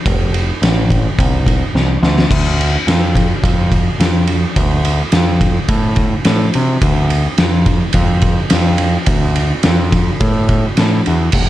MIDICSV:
0, 0, Header, 1, 3, 480
1, 0, Start_track
1, 0, Key_signature, -1, "minor"
1, 0, Tempo, 563380
1, 47, Time_signature, 4, 2, 24, 8
1, 9793, End_track
2, 0, Start_track
2, 0, Title_t, "Picked electric bass"
2, 0, Program_c, 0, 34
2, 51, Note_on_c, 0, 29, 102
2, 429, Note_off_c, 0, 29, 0
2, 528, Note_on_c, 0, 33, 89
2, 907, Note_off_c, 0, 33, 0
2, 1013, Note_on_c, 0, 36, 82
2, 1390, Note_off_c, 0, 36, 0
2, 1490, Note_on_c, 0, 36, 92
2, 1678, Note_off_c, 0, 36, 0
2, 1726, Note_on_c, 0, 38, 96
2, 1915, Note_off_c, 0, 38, 0
2, 1968, Note_on_c, 0, 38, 103
2, 2347, Note_off_c, 0, 38, 0
2, 2446, Note_on_c, 0, 41, 89
2, 2826, Note_off_c, 0, 41, 0
2, 2927, Note_on_c, 0, 41, 92
2, 3306, Note_off_c, 0, 41, 0
2, 3406, Note_on_c, 0, 41, 90
2, 3786, Note_off_c, 0, 41, 0
2, 3893, Note_on_c, 0, 38, 94
2, 4270, Note_off_c, 0, 38, 0
2, 4368, Note_on_c, 0, 41, 96
2, 4748, Note_off_c, 0, 41, 0
2, 4845, Note_on_c, 0, 45, 78
2, 5226, Note_off_c, 0, 45, 0
2, 5336, Note_on_c, 0, 45, 95
2, 5522, Note_off_c, 0, 45, 0
2, 5583, Note_on_c, 0, 48, 88
2, 5767, Note_off_c, 0, 48, 0
2, 5809, Note_on_c, 0, 38, 104
2, 6189, Note_off_c, 0, 38, 0
2, 6290, Note_on_c, 0, 41, 92
2, 6670, Note_off_c, 0, 41, 0
2, 6771, Note_on_c, 0, 41, 90
2, 7150, Note_off_c, 0, 41, 0
2, 7264, Note_on_c, 0, 41, 82
2, 7638, Note_off_c, 0, 41, 0
2, 7728, Note_on_c, 0, 38, 103
2, 8108, Note_off_c, 0, 38, 0
2, 8222, Note_on_c, 0, 41, 94
2, 8597, Note_off_c, 0, 41, 0
2, 8695, Note_on_c, 0, 45, 81
2, 9073, Note_off_c, 0, 45, 0
2, 9193, Note_on_c, 0, 45, 87
2, 9374, Note_off_c, 0, 45, 0
2, 9435, Note_on_c, 0, 40, 92
2, 9615, Note_off_c, 0, 40, 0
2, 9661, Note_on_c, 0, 29, 106
2, 9793, Note_off_c, 0, 29, 0
2, 9793, End_track
3, 0, Start_track
3, 0, Title_t, "Drums"
3, 49, Note_on_c, 9, 36, 118
3, 52, Note_on_c, 9, 51, 99
3, 134, Note_off_c, 9, 36, 0
3, 137, Note_off_c, 9, 51, 0
3, 291, Note_on_c, 9, 51, 72
3, 376, Note_off_c, 9, 51, 0
3, 535, Note_on_c, 9, 51, 90
3, 541, Note_on_c, 9, 38, 113
3, 620, Note_off_c, 9, 51, 0
3, 626, Note_off_c, 9, 38, 0
3, 771, Note_on_c, 9, 36, 85
3, 780, Note_on_c, 9, 51, 70
3, 856, Note_off_c, 9, 36, 0
3, 865, Note_off_c, 9, 51, 0
3, 1011, Note_on_c, 9, 36, 106
3, 1023, Note_on_c, 9, 51, 81
3, 1096, Note_off_c, 9, 36, 0
3, 1108, Note_off_c, 9, 51, 0
3, 1248, Note_on_c, 9, 36, 74
3, 1258, Note_on_c, 9, 51, 65
3, 1334, Note_off_c, 9, 36, 0
3, 1343, Note_off_c, 9, 51, 0
3, 1495, Note_on_c, 9, 38, 62
3, 1580, Note_off_c, 9, 38, 0
3, 1731, Note_on_c, 9, 38, 84
3, 1816, Note_off_c, 9, 38, 0
3, 1861, Note_on_c, 9, 38, 86
3, 1947, Note_off_c, 9, 38, 0
3, 1965, Note_on_c, 9, 36, 115
3, 1971, Note_on_c, 9, 49, 100
3, 2050, Note_off_c, 9, 36, 0
3, 2056, Note_off_c, 9, 49, 0
3, 2221, Note_on_c, 9, 51, 75
3, 2306, Note_off_c, 9, 51, 0
3, 2453, Note_on_c, 9, 51, 100
3, 2459, Note_on_c, 9, 38, 112
3, 2539, Note_off_c, 9, 51, 0
3, 2544, Note_off_c, 9, 38, 0
3, 2687, Note_on_c, 9, 36, 84
3, 2696, Note_on_c, 9, 51, 77
3, 2772, Note_off_c, 9, 36, 0
3, 2781, Note_off_c, 9, 51, 0
3, 2927, Note_on_c, 9, 36, 109
3, 2938, Note_on_c, 9, 51, 90
3, 3012, Note_off_c, 9, 36, 0
3, 3023, Note_off_c, 9, 51, 0
3, 3166, Note_on_c, 9, 36, 81
3, 3168, Note_on_c, 9, 51, 76
3, 3251, Note_off_c, 9, 36, 0
3, 3253, Note_off_c, 9, 51, 0
3, 3411, Note_on_c, 9, 51, 94
3, 3417, Note_on_c, 9, 38, 113
3, 3497, Note_off_c, 9, 51, 0
3, 3502, Note_off_c, 9, 38, 0
3, 3641, Note_on_c, 9, 51, 81
3, 3726, Note_off_c, 9, 51, 0
3, 3887, Note_on_c, 9, 36, 123
3, 3887, Note_on_c, 9, 51, 103
3, 3972, Note_off_c, 9, 51, 0
3, 3973, Note_off_c, 9, 36, 0
3, 4129, Note_on_c, 9, 51, 73
3, 4214, Note_off_c, 9, 51, 0
3, 4361, Note_on_c, 9, 51, 91
3, 4367, Note_on_c, 9, 38, 109
3, 4446, Note_off_c, 9, 51, 0
3, 4452, Note_off_c, 9, 38, 0
3, 4608, Note_on_c, 9, 36, 81
3, 4611, Note_on_c, 9, 51, 71
3, 4693, Note_off_c, 9, 36, 0
3, 4696, Note_off_c, 9, 51, 0
3, 4843, Note_on_c, 9, 51, 89
3, 4845, Note_on_c, 9, 36, 107
3, 4928, Note_off_c, 9, 51, 0
3, 4930, Note_off_c, 9, 36, 0
3, 5077, Note_on_c, 9, 51, 65
3, 5086, Note_on_c, 9, 36, 80
3, 5163, Note_off_c, 9, 51, 0
3, 5171, Note_off_c, 9, 36, 0
3, 5322, Note_on_c, 9, 51, 96
3, 5328, Note_on_c, 9, 38, 112
3, 5407, Note_off_c, 9, 51, 0
3, 5413, Note_off_c, 9, 38, 0
3, 5568, Note_on_c, 9, 51, 76
3, 5654, Note_off_c, 9, 51, 0
3, 5807, Note_on_c, 9, 51, 99
3, 5808, Note_on_c, 9, 36, 121
3, 5892, Note_off_c, 9, 51, 0
3, 5893, Note_off_c, 9, 36, 0
3, 6051, Note_on_c, 9, 51, 74
3, 6136, Note_off_c, 9, 51, 0
3, 6285, Note_on_c, 9, 51, 92
3, 6291, Note_on_c, 9, 38, 114
3, 6370, Note_off_c, 9, 51, 0
3, 6376, Note_off_c, 9, 38, 0
3, 6527, Note_on_c, 9, 36, 76
3, 6527, Note_on_c, 9, 51, 70
3, 6612, Note_off_c, 9, 51, 0
3, 6613, Note_off_c, 9, 36, 0
3, 6754, Note_on_c, 9, 51, 103
3, 6766, Note_on_c, 9, 36, 109
3, 6839, Note_off_c, 9, 51, 0
3, 6851, Note_off_c, 9, 36, 0
3, 6999, Note_on_c, 9, 51, 72
3, 7007, Note_on_c, 9, 36, 82
3, 7084, Note_off_c, 9, 51, 0
3, 7092, Note_off_c, 9, 36, 0
3, 7241, Note_on_c, 9, 51, 108
3, 7247, Note_on_c, 9, 38, 114
3, 7326, Note_off_c, 9, 51, 0
3, 7332, Note_off_c, 9, 38, 0
3, 7481, Note_on_c, 9, 51, 81
3, 7566, Note_off_c, 9, 51, 0
3, 7722, Note_on_c, 9, 51, 108
3, 7729, Note_on_c, 9, 36, 122
3, 7807, Note_off_c, 9, 51, 0
3, 7814, Note_off_c, 9, 36, 0
3, 7971, Note_on_c, 9, 51, 77
3, 8056, Note_off_c, 9, 51, 0
3, 8204, Note_on_c, 9, 51, 89
3, 8210, Note_on_c, 9, 38, 120
3, 8290, Note_off_c, 9, 51, 0
3, 8296, Note_off_c, 9, 38, 0
3, 8456, Note_on_c, 9, 36, 79
3, 8456, Note_on_c, 9, 51, 78
3, 8541, Note_off_c, 9, 36, 0
3, 8541, Note_off_c, 9, 51, 0
3, 8695, Note_on_c, 9, 51, 85
3, 8698, Note_on_c, 9, 36, 104
3, 8780, Note_off_c, 9, 51, 0
3, 8783, Note_off_c, 9, 36, 0
3, 8935, Note_on_c, 9, 51, 66
3, 8938, Note_on_c, 9, 36, 78
3, 9020, Note_off_c, 9, 51, 0
3, 9023, Note_off_c, 9, 36, 0
3, 9175, Note_on_c, 9, 51, 89
3, 9181, Note_on_c, 9, 38, 100
3, 9261, Note_off_c, 9, 51, 0
3, 9267, Note_off_c, 9, 38, 0
3, 9422, Note_on_c, 9, 51, 66
3, 9507, Note_off_c, 9, 51, 0
3, 9646, Note_on_c, 9, 57, 105
3, 9656, Note_on_c, 9, 36, 115
3, 9731, Note_off_c, 9, 57, 0
3, 9741, Note_off_c, 9, 36, 0
3, 9793, End_track
0, 0, End_of_file